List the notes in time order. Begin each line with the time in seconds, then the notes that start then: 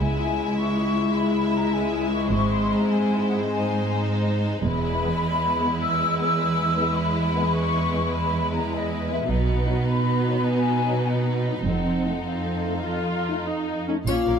0.00 C#2 G#3 E4 E5 G#5
0.57 C#6
1.16 B5
1.56 A#5
1.74 G#5
2.12 C#6
2.31 G#1 G#2 C4 C5 C#6
2.52 C6
2.72 A#5
2.91 G#5
3.29 F#5
3.49 D#4 G#5
4.64 E1 E2 G#3 E4 B4 B5
5.01 G#3 B3
5.60 G#3 B3
5.82 E6
6.18 G#3 B3 E6
6.76 G#3 B3
6.95 B5
7.35 G#3 B3
7.53 C#6
7.92 G#3 B3
8.13 B5
8.52 G#3 B3 A#5
8.73 D#5
9.09 G#3 B3 E5
9.29 B1 B2 B3 D#4 B4 F#5
9.67 F#3 D#4
9.90 B5
10.27 F#3 D#4
10.45 G#5
10.86 F#3 D#4
11.06 F#5
11.46 F#3 D#4
11.65 F1 F2 C4 A4 F#5
12.05 A3 D#4
12.26 C4 F5
12.65 A3 D#4
12.86 F4
13.27 A3 D#4
13.47 D#4
13.88 A3 C#4 D#4
14.06 A#1 A#2 A#3 C#4 F4 C#5 F5, triangle
14.27 A#1 A#2 C#4 A#4